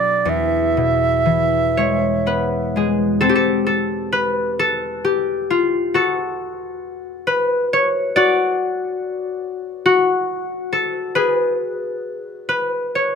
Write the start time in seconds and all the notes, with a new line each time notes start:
Already playing: B2 F#3 B3 D4 F#4 D5
0.25 E2 E5
0.77 B2
1.26 E3
1.77 G#3 C#5
2.26 B3 B4
2.76 G#3 G#4
3.21 C4 A4
3.29 G4
3.35 A4
3.67 A4
4.12 B4
4.59 A4
5.05 G4
5.50 F4
5.94 F#4 A4
7.27 B4
7.73 C#5
8.16 F#4 D5
9.86 F#4
10.73 A4
11.15 G#4 B4
12.49 B4
12.95 C#5